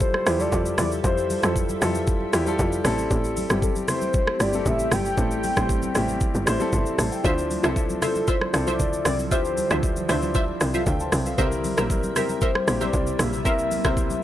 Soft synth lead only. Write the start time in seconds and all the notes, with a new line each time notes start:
0.01 C5
0.40 D5
0.79 D5
1.05 C5
3.63 A4
3.89 C5
4.41 D5
4.67 E5
4.92 G5
5.06 G5
8.03 A4
8.28 C5
8.67 D5
9.06 D5
9.32 C5
12.17 A#4
12.42 C5
12.81 D5
13.19 E5
13.45 E5